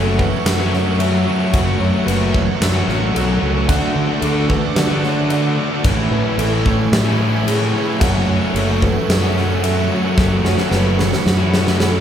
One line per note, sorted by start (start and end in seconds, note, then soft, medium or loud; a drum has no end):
0.00 0.32 F#1 loud
0.00 0.18 F#3 loud
0.00 0.18 A3 loud
0.00 7.97 A3 medium
0.00 0.20 C#4 loud
0.00 0.20 F#4 loud
0.00 0.19 A4 medium
0.00 0.58 A4 medium
0.00 3.64 E5 medium
0.00 3.64 F#5 medium
0.00 3.64 C#6 medium
0.05 0.19 A3 medium
0.05 0.19 C#4 medium
0.05 0.19 F#4 medium
0.17 0.71 F#3 medium
0.17 0.35 A3 medium
0.17 0.32 C#4 medium
0.17 0.31 F#4 medium
0.17 0.72 B4 medium
0.17 muted distorted electric guitar stroke medium
0.17 kick medium
0.32 0.62 A3 medium
0.32 0.59 C#4 medium
0.32 0.57 F#4 medium
0.45 1.26 F#2 medium
0.45 snare loud
0.45 crash medium
0.58 0.72 A3 medium
0.58 0.72 C#4 medium
0.58 0.74 F#4 medium
0.71 0.98 F#3 medium
0.71 0.99 A3 medium
0.71 0.99 C#4 medium
0.71 1.01 F#4 medium
0.71 0.99 C#5 medium
0.71 snare soft
0.85 0.99 A3 medium
0.85 1.00 C#4 medium
0.85 1.01 F#4 medium
0.98 1.25 F#3 medium
0.98 1.14 A3 loud
0.98 1.12 C#4 loud
0.98 1.11 F#4 loud
0.98 1.53 E5 medium
0.98 crash medium
1.11 1.26 A3 medium
1.11 1.26 C#4 medium
1.11 1.28 F#4 medium
1.25 1.51 F#3 medium
1.25 1.41 A3 medium
1.25 1.39 C#4 medium
1.25 1.38 F#4 medium
1.39 1.53 A3 medium
1.39 1.53 C#4 medium
1.39 1.55 F#4 medium
1.52 1.74 F#1 loud
1.52 1.79 F#3 medium
1.52 1.80 A3 loud
1.52 1.80 C#4 loud
1.52 1.82 F#4 loud
1.52 kick loud
1.52 crash medium
1.66 1.95 A3 medium
1.66 1.93 C#4 medium
1.66 1.91 F#4 medium
1.79 1.90 F#2 medium
1.79 2.06 F#3 medium
1.79 1.95 A3 medium
1.79 1.92 C#4 medium
1.79 1.91 F#4 medium
1.79 2.06 C#5 medium
1.92 2.07 A3 medium
1.92 2.07 C#4 medium
1.92 2.09 F#4 medium
2.06 2.47 F#1 loud
2.06 2.33 F#3 loud
2.06 2.22 A3 loud
2.06 2.20 C#4 medium
2.06 2.19 F#4 loud
2.06 2.60 B4 medium
2.06 crash medium
2.20 2.34 A3 medium
2.20 2.33 C#4 medium
2.20 2.34 F#4 medium
2.34 2.74 F#3 medium
2.34 2.50 A3 medium
2.34 2.48 C#4 medium
2.34 2.46 F#4 medium
2.34 muted distorted electric guitar stroke soft
2.34 kick loud
2.48 2.76 A3 medium
2.48 2.73 C#4 medium
2.48 2.72 F#4 medium
2.61 2.81 F#2 medium
2.61 snare loud
2.61 crash medium
2.73 2.87 A3 medium
2.73 2.88 C#4 medium
2.73 2.88 F#4 medium
2.86 3.12 A1 medium
2.86 3.12 F#3 medium
2.86 3.14 A3 medium
2.86 3.14 C#4 medium
2.86 3.14 F#4 medium
2.86 snare soft
3.00 3.15 A3 medium
3.00 3.15 C#4 medium
3.00 3.16 F#4 medium
3.13 3.39 B1 medium
3.13 3.38 F#3 medium
3.13 3.28 A3 medium
3.13 3.26 C#4 loud
3.13 3.25 F#4 loud
3.13 3.68 A4 medium
3.13 crash medium
3.26 3.40 A3 medium
3.26 3.40 C#4 medium
3.26 3.41 F#4 medium
3.39 3.66 C#2 medium
3.39 3.66 F#3 medium
3.39 3.55 A3 medium
3.39 3.53 C#4 medium
3.39 3.51 F#4 loud
3.52 3.67 A3 medium
3.52 3.66 C#4 medium
3.52 3.65 F#4 medium
3.67 3.89 D2 loud
3.67 3.92 D3 medium
3.67 3.94 A3 loud
3.67 3.94 D4 loud
3.67 3.95 F#4 loud
3.67 5.83 D5 medium
3.67 4.22 F#5 loud
3.67 5.83 F#5 medium
3.67 5.83 D6 medium
3.67 kick loud
3.67 crash medium
3.81 4.11 A3 medium
3.81 4.09 D4 medium
3.81 4.06 F#4 medium
3.93 4.18 D3 medium
3.93 4.06 D3 loud
3.93 4.10 A3 medium
3.93 4.08 D4 medium
3.93 4.06 F#4 medium
4.07 4.20 A3 medium
4.07 4.20 D4 medium
4.07 4.21 F#4 medium
4.19 4.62 D2 loud
4.19 4.46 D3 loud
4.19 4.36 A3 loud
4.19 4.34 D4 loud
4.19 4.32 F#4 loud
4.19 4.49 A4 medium
4.19 crash medium
4.33 4.47 A3 medium
4.33 4.47 D4 medium
4.33 4.47 F#4 medium
4.48 4.89 D3 medium
4.48 4.65 A3 medium
4.48 4.63 D4 medium
4.48 4.61 F#4 medium
4.48 5.03 B4 medium
4.48 muted distorted electric guitar stroke medium
4.48 kick medium
4.62 4.92 A3 medium
4.62 4.90 D4 medium
4.62 4.88 F#4 medium
4.76 5.57 D3 loud
4.76 snare loud
4.76 crash medium
4.87 5.02 A3 medium
4.87 5.02 D4 medium
4.87 5.04 F#4 medium
5.01 5.28 D3 medium
5.01 5.29 A3 medium
5.01 5.30 D4 medium
5.01 5.30 F#4 medium
5.01 5.30 C#5 medium
5.01 snare soft
5.16 5.29 A3 medium
5.16 5.29 D4 medium
5.16 5.31 F#4 medium
5.29 5.55 D3 medium
5.29 5.46 A3 loud
5.29 5.43 D4 loud
5.29 5.42 F#4 loud
5.29 5.85 D5 medium
5.29 crash medium
5.43 5.57 A3 medium
5.43 5.57 D4 medium
5.43 5.58 F#4 medium
5.56 5.82 D3 medium
5.56 5.73 A3 medium
5.56 5.70 D4 medium
5.56 5.69 F#4 loud
5.70 5.84 A3 medium
5.70 5.83 D4 medium
5.70 5.82 F#4 medium
5.83 6.05 A1 loud
5.83 6.37 A2 medium
5.83 6.11 E3 loud
5.83 6.12 A3 loud
5.83 6.13 C#4 loud
5.83 6.14 E4 loud
5.83 12.01 E5 medium
5.83 7.99 G#5 medium
5.83 7.99 C#6 medium
5.83 kick loud
5.83 crash medium
5.96 6.26 A3 medium
5.96 6.24 C#4 medium
5.96 6.23 E4 medium
6.11 6.21 A2 medium
6.11 6.39 E3 medium
6.11 6.27 A3 medium
6.11 6.26 C#4 medium
6.11 6.24 E4 loud
6.11 6.38 B4 loud
6.24 6.39 A3 medium
6.24 6.40 C#4 medium
6.24 6.41 E4 medium
6.38 6.79 A1 loud
6.38 6.79 A2 loud
6.38 6.65 E3 loud
6.38 6.54 A3 loud
6.38 6.53 C#4 loud
6.38 6.51 E4 loud
6.38 6.93 A4 medium
6.38 crash medium
6.51 6.65 A3 medium
6.51 6.65 C#4 medium
6.51 6.66 E4 loud
6.64 7.18 E3 medium
6.64 6.81 A3 medium
6.64 6.80 C#4 medium
6.64 6.78 E4 medium
6.64 muted distorted electric guitar stroke soft
6.64 kick loud
6.78 7.08 A3 medium
6.78 7.06 C#4 medium
6.78 7.04 E4 medium
6.92 7.73 A2 medium
6.92 snare loud
6.92 crash medium
7.05 7.19 A3 medium
7.05 7.20 C#4 medium
7.05 7.21 E4 medium
7.19 7.46 E3 medium
7.19 7.47 A3 medium
7.19 7.48 C#4 medium
7.19 7.48 E4 medium
7.32 7.47 A3 medium
7.32 7.47 C#4 medium
7.32 7.48 E4 medium
7.45 7.87 A2 loud
7.45 7.73 E3 loud
7.45 7.62 A3 loud
7.45 7.61 C#4 loud
7.45 7.59 E4 loud
7.45 8.01 G#4 medium
7.45 crash medium
7.60 7.73 A3 medium
7.60 7.75 C#4 medium
7.60 7.75 E4 medium
7.73 7.99 E3 medium
7.73 7.89 A3 medium
7.73 7.88 C#4 medium
7.73 7.86 E4 medium
7.87 8.00 A3 medium
7.87 8.01 C#4 medium
7.87 8.02 E4 medium
8.00 8.21 F#1 loud
8.00 8.27 F#3 loud
8.00 8.28 A3 loud
8.00 8.29 C#4 loud
8.00 8.30 F#4 loud
8.00 12.01 A4 medium
8.00 8.55 F#5 loud
8.00 12.01 F#5 medium
8.00 10.15 C#6 medium
8.00 kick loud
8.00 crash medium
8.12 8.43 A3 medium
8.12 8.41 C#4 medium
8.12 8.39 F#4 medium
8.27 8.38 F#2 medium
8.27 8.53 F#3 medium
8.27 8.43 A3 medium
8.27 8.42 C#4 medium
8.27 8.40 F#4 medium
8.40 8.55 A3 medium
8.40 8.56 C#4 medium
8.40 8.56 F#4 medium
8.54 8.95 F#1 loud
8.54 8.82 F#3 loud
8.54 8.70 A3 loud
8.54 8.69 C#4 loud
8.54 8.67 F#4 loud
8.54 8.82 A4 medium
8.54 crash medium
8.67 8.82 A3 medium
8.67 8.83 C#4 medium
8.67 8.83 F#4 medium
8.81 9.35 F#3 medium
8.81 8.97 A3 medium
8.81 8.95 C#4 medium
8.81 8.94 F#4 medium
8.81 9.36 B4 medium
8.81 muted distorted electric guitar stroke medium
8.81 kick medium
8.94 9.25 A3 medium
8.94 9.23 C#4 medium
8.94 9.21 F#4 medium
9.08 9.90 F#2 medium
9.08 snare loud
9.08 crash medium
9.22 9.36 A3 medium
9.22 9.36 C#4 medium
9.22 9.38 F#4 medium
9.35 9.61 F#3 medium
9.35 9.62 A3 medium
9.35 9.62 C#4 medium
9.35 9.64 F#4 medium
9.35 9.63 C#5 medium
9.35 snare soft
9.48 9.63 A3 medium
9.48 9.63 C#4 medium
9.48 9.65 F#4 medium
9.62 9.88 F#3 medium
9.62 9.78 A3 loud
9.62 9.76 C#4 loud
9.62 9.75 F#4 loud
9.62 10.17 E5 medium
9.62 crash medium
9.75 9.89 A3 medium
9.75 9.89 C#4 medium
9.75 9.90 F#4 medium
9.88 10.13 F#3 medium
9.88 10.04 A3 medium
9.88 10.02 C#4 medium
9.88 10.01 F#4 loud
10.02 10.15 A3 medium
10.02 10.16 C#4 medium
10.02 10.16 F#4 medium
10.15 10.38 F#1 loud
10.15 10.41 F#3 loud
10.15 10.42 A3 loud
10.15 10.43 C#4 loud
10.15 10.44 F#4 loud
10.15 12.01 B5 loud
10.15 kick loud
10.15 snare medium
10.29 10.58 C#4 medium
10.29 10.56 F#4 medium
10.34 10.59 A3 medium
10.42 10.54 F#2 medium
10.42 10.69 F#3 medium
10.42 10.58 A3 medium
10.42 10.57 C#4 medium
10.42 10.55 F#4 loud
10.42 10.72 C#5 medium
10.42 snare medium
10.56 10.70 A3 medium
10.56 10.71 C#4 medium
10.56 10.72 F#4 medium
10.56 snare medium
10.70 11.12 F#1 loud
10.70 10.96 F#3 loud
10.70 10.85 A3 loud
10.70 10.83 C#4 loud
10.70 10.81 F#4 loud
10.70 11.26 B4 loud
10.70 snare medium
10.82 10.97 A3 medium
10.82 10.97 C#4 medium
10.82 10.97 F#4 medium
10.97 11.39 F#3 medium
10.97 11.14 A3 medium
10.97 11.12 C#4 medium
10.97 11.11 F#4 medium
10.97 muted distorted electric guitar stroke medium
10.97 snare medium
11.12 11.41 A3 medium
11.12 11.40 C#4 medium
11.12 11.38 F#4 medium
11.12 snare medium
11.26 12.01 F#2 loud
11.26 snare loud
11.38 11.52 A3 medium
11.38 11.53 C#4 medium
11.38 11.54 F#4 medium
11.52 11.78 F#3 medium
11.52 11.80 A3 medium
11.52 11.80 C#4 medium
11.52 11.81 F#4 medium
11.52 snare loud
11.65 11.79 A3 medium
11.65 11.80 C#4 medium
11.65 11.82 F#4 medium
11.65 snare medium
11.80 12.01 F#3 medium
11.80 11.95 A3 loud
11.80 11.95 C#4 loud
11.80 11.93 F#4 loud
11.80 12.01 A4 medium
11.80 snare loud
11.94 12.01 A3 medium
11.94 12.01 C#4 medium
11.94 12.01 F#4 medium